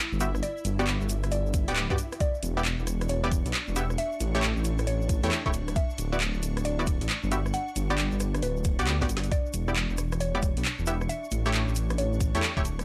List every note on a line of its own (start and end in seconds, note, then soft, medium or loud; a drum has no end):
0.00 2.22 E4 medium
0.00 0.36 D5 loud
0.00 2.22 E5 medium
0.12 0.41 G1 loud
0.12 shaker soft
0.20 0.30 B3 medium
0.20 0.30 F#4 medium
0.20 0.30 G4 medium
0.20 0.30 E5 medium
0.20 closed hi-hat medium
0.20 shaker loud
0.35 cross-stick medium
0.35 shaker soft
0.43 0.59 D5 loud
0.43 closed hi-hat medium
0.43 shaker medium
0.57 shaker soft
0.65 0.98 G1 loud
0.65 closed hi-hat loud
0.65 shaker loud
0.79 1.65 B3 loud
0.79 1.65 F#4 medium
0.79 1.65 G4 medium
0.79 1.65 D5 loud
0.79 shaker soft
0.87 clap loud
0.87 closed hi-hat medium
0.87 shaker soft
1.01 1.30 G1 loud
1.01 shaker soft
1.09 closed hi-hat medium
1.09 shaker loud
1.23 cross-stick medium
1.23 closed hi-hat soft
1.23 shaker soft
1.32 1.65 G1 medium
1.32 2.14 D5 medium
1.32 closed hi-hat medium
1.32 shaker medium
1.46 shaker soft
1.54 kick loud
1.54 closed hi-hat loud
1.54 shaker loud
1.68 1.86 D1 medium
1.68 1.87 B3 loud
1.68 1.87 F#4 medium
1.68 1.87 G4 medium
1.68 1.87 D5 loud
1.68 closed hi-hat medium
1.68 shaker soft
1.75 clap loud
1.75 closed hi-hat medium
1.75 shaker medium
1.90 1.97 G2 medium
1.90 1.96 B3 medium
1.90 1.96 F#4 medium
1.90 1.96 G4 medium
1.90 1.96 D5 medium
1.90 kick medium
1.90 shaker soft
1.98 closed hi-hat medium
1.98 shaker loud
2.12 cross-stick medium
2.12 closed hi-hat soft
2.12 shaker soft
2.20 9.30 D4 medium
2.20 2.37 D5 loud
2.20 9.30 C#6 medium
2.20 kick loud
2.20 closed hi-hat medium
2.20 shaker medium
2.34 shaker soft
2.43 2.76 E1 loud
2.43 closed hi-hat loud
2.43 shaker loud
2.57 2.62 B3 medium
2.57 2.62 E4 medium
2.57 2.62 G4 medium
2.57 2.62 D5 medium
2.57 shaker soft
2.65 clap loud
2.65 closed hi-hat medium
2.65 shaker medium
2.79 3.07 E1 loud
2.79 shaker soft
2.87 cross-stick medium
2.87 closed hi-hat medium
2.87 shaker medium
3.01 cross-stick medium
3.01 closed hi-hat soft
3.01 shaker soft
3.09 3.42 E1 medium
3.09 3.92 C#5 medium
3.09 closed hi-hat medium
3.09 shaker medium
3.24 3.29 B3 medium
3.24 3.29 E4 medium
3.24 3.29 G4 medium
3.24 3.29 D5 loud
3.24 shaker soft
3.32 kick loud
3.32 closed hi-hat loud
3.32 shaker loud
3.46 3.53 B1 medium
3.46 closed hi-hat medium
3.46 shaker soft
3.53 clap loud
3.53 closed hi-hat medium
3.53 shaker medium
3.68 3.96 E1 loud
3.68 shaker soft
3.76 3.86 B3 medium
3.76 3.86 E4 medium
3.76 3.86 G4 medium
3.76 3.86 E5 medium
3.76 closed hi-hat medium
3.76 shaker loud
3.90 cross-stick medium
3.90 shaker soft
3.98 4.15 E5 loud
3.98 closed hi-hat medium
3.98 shaker soft
4.12 shaker soft
4.20 4.53 A1 loud
4.20 closed hi-hat loud
4.20 shaker medium
4.35 5.20 A3 loud
4.35 5.20 E4 medium
4.35 5.20 G4 medium
4.35 5.20 C#5 loud
4.35 shaker soft
4.42 clap loud
4.42 closed hi-hat medium
4.42 shaker medium
4.57 4.85 A1 loud
4.57 shaker soft
4.64 closed hi-hat medium
4.64 shaker medium
4.78 cross-stick medium
4.78 closed hi-hat soft
4.78 shaker soft
4.87 5.20 A1 medium
4.87 5.70 C#5 loud
4.87 closed hi-hat medium
4.87 shaker soft
5.02 shaker soft
5.09 kick loud
5.09 closed hi-hat loud
5.09 shaker medium
5.23 5.30 E2 medium
5.23 5.42 A3 loud
5.23 5.42 E4 medium
5.23 5.42 G4 medium
5.23 5.42 C#5 loud
5.23 closed hi-hat medium
5.23 shaker soft
5.31 clap loud
5.31 closed hi-hat medium
5.31 shaker medium
5.46 5.74 D1 loud
5.46 5.51 A3 medium
5.46 5.51 E4 medium
5.46 5.51 G4 medium
5.46 5.51 C#5 medium
5.46 kick medium
5.46 shaker soft
5.53 closed hi-hat medium
5.53 shaker loud
5.68 cross-stick medium
5.68 closed hi-hat soft
5.68 shaker soft
5.76 5.93 E5 loud
5.76 kick loud
5.76 closed hi-hat medium
5.76 shaker medium
5.90 shaker soft
5.98 6.31 D1 loud
5.98 closed hi-hat loud
5.98 shaker medium
6.12 6.18 B3 medium
6.12 6.18 E4 medium
6.12 6.18 F#4 medium
6.12 6.18 D5 medium
6.12 shaker soft
6.20 clap loud
6.20 closed hi-hat medium
6.20 shaker soft
6.34 6.63 D1 loud
6.34 shaker soft
6.43 closed hi-hat loud
6.43 shaker medium
6.57 cross-stick medium
6.57 closed hi-hat soft
6.57 shaker soft
6.64 6.98 D1 medium
6.64 7.47 D5 loud
6.64 closed hi-hat medium
6.64 shaker soft
6.79 6.84 B3 medium
6.79 6.84 E4 medium
6.79 6.84 F#4 medium
6.79 6.84 D5 loud
6.79 shaker soft
6.87 kick loud
6.87 closed hi-hat loud
6.87 shaker medium
7.01 7.08 A1 medium
7.01 closed hi-hat medium
7.01 shaker soft
7.09 clap loud
7.09 closed hi-hat medium
7.09 shaker soft
7.23 7.52 G1 loud
7.23 shaker soft
7.32 7.41 B3 medium
7.32 7.41 F#4 medium
7.32 7.41 G4 medium
7.32 7.41 E5 medium
7.32 closed hi-hat medium
7.32 shaker medium
7.46 cross-stick medium
7.46 shaker soft
7.54 7.70 F#5 loud
7.54 closed hi-hat medium
7.54 shaker soft
7.68 shaker soft
7.76 8.09 G1 loud
7.76 closed hi-hat loud
7.76 shaker medium
7.90 8.76 B3 loud
7.90 8.76 F#4 medium
7.90 8.76 G4 medium
7.90 8.76 D5 loud
7.90 shaker soft
7.98 clap loud
7.98 closed hi-hat medium
7.98 shaker medium
8.12 8.41 G1 loud
8.12 shaker soft
8.20 cross-stick medium
8.20 closed hi-hat loud
8.20 shaker medium
8.35 cross-stick medium
8.35 closed hi-hat soft
8.35 shaker soft
8.43 8.81 D1 loud
8.43 9.25 B4 loud
8.43 closed hi-hat medium
8.43 shaker soft
8.57 shaker soft
8.64 kick loud
8.64 closed hi-hat loud
8.64 shaker loud
8.79 9.03 D2 loud
8.79 8.98 B3 loud
8.79 8.98 F#4 medium
8.79 8.98 G4 medium
8.79 8.98 D5 loud
8.79 closed hi-hat medium
8.79 shaker soft
8.87 snare medium
8.87 clap loud
8.87 closed hi-hat medium
8.87 shaker medium
9.01 9.30 G1 medium
9.01 9.07 B3 medium
9.01 9.07 F#4 medium
9.01 9.07 G4 medium
9.01 9.07 D5 medium
9.01 kick medium
9.01 snare medium
9.01 shaker soft
9.09 closed hi-hat loud
9.09 shaker medium
9.17 snare loud
9.24 closed hi-hat soft
9.24 shaker soft
9.32 12.85 D4 medium
9.32 9.48 D5 loud
9.32 12.85 C#6 medium
9.32 kick loud
9.32 closed hi-hat medium
9.32 shaker medium
9.46 shaker soft
9.53 9.87 E1 loud
9.53 closed hi-hat loud
9.53 shaker medium
9.68 9.73 B3 medium
9.68 9.73 E4 medium
9.68 9.73 G4 medium
9.68 9.73 D5 medium
9.68 shaker soft
9.76 clap loud
9.76 closed hi-hat medium
9.76 shaker soft
9.90 10.18 E1 loud
9.90 shaker soft
9.97 cross-stick medium
9.97 closed hi-hat loud
9.97 shaker loud
10.12 cross-stick medium
10.12 closed hi-hat soft
10.12 shaker soft
10.20 10.53 E1 medium
10.20 11.03 C#5 loud
10.20 closed hi-hat medium
10.20 shaker medium
10.35 10.40 B3 medium
10.35 10.40 E4 medium
10.35 10.40 G4 medium
10.35 10.40 D5 loud
10.35 shaker soft
10.43 kick loud
10.43 closed hi-hat loud
10.43 shaker medium
10.57 10.64 B1 loud
10.57 closed hi-hat medium
10.57 shaker soft
10.65 clap loud
10.65 closed hi-hat medium
10.65 shaker medium
10.79 11.07 E1 loud
10.79 shaker soft
10.86 10.97 B3 medium
10.86 10.97 E4 medium
10.86 10.97 G4 medium
10.86 10.97 E5 medium
10.86 closed hi-hat loud
10.86 shaker medium
11.01 cross-stick medium
11.01 shaker soft
11.09 11.26 E5 loud
11.09 closed hi-hat medium
11.09 shaker medium
11.24 shaker soft
11.31 11.64 A1 loud
11.31 closed hi-hat loud
11.31 shaker loud
11.46 12.31 A3 loud
11.46 12.31 E4 medium
11.46 12.31 G4 medium
11.46 12.31 C#5 loud
11.46 shaker soft
11.54 clap loud
11.54 closed hi-hat medium
11.54 shaker medium
11.68 11.96 A1 loud
11.68 shaker soft
11.75 closed hi-hat loud
11.75 shaker loud
11.90 cross-stick medium
11.90 closed hi-hat soft
11.90 shaker soft
11.98 12.31 A1 medium
11.98 12.81 C#5 loud
11.98 closed hi-hat medium
11.98 shaker medium
12.13 shaker soft
12.20 kick loud
12.20 closed hi-hat loud
12.20 shaker loud
12.35 12.41 E2 medium
12.35 12.53 A3 loud
12.35 12.53 E4 medium
12.35 12.53 G4 medium
12.35 12.53 C#5 loud
12.35 closed hi-hat medium
12.35 shaker soft
12.43 clap loud
12.43 closed hi-hat medium
12.43 shaker medium
12.57 12.85 D1 loud
12.57 12.62 A3 medium
12.57 12.62 E4 medium
12.57 12.62 G4 medium
12.57 12.62 C#5 medium
12.57 kick medium
12.57 shaker soft
12.65 closed hi-hat medium
12.65 shaker loud
12.79 cross-stick medium
12.79 closed hi-hat soft
12.79 shaker soft